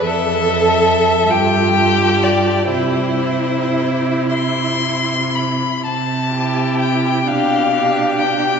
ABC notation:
X:1
M:6/8
L:1/16
Q:3/8=42
K:C
V:1 name="Violin"
e6 g4 d2 | c6 c'4 b2 | a4 g2 f4 g2 |]
V:2 name="Violin"
A6 G6 | E8- E z3 | z2 G4 G2 G4 |]
V:3 name="Viola"
A6 F6 | E8- E3 z | z2 E4 D2 D4 |]
V:4 name="Cello" clef=bass
F,,6 G,,6 | C,8- C,3 z | C,6 B,,6 |]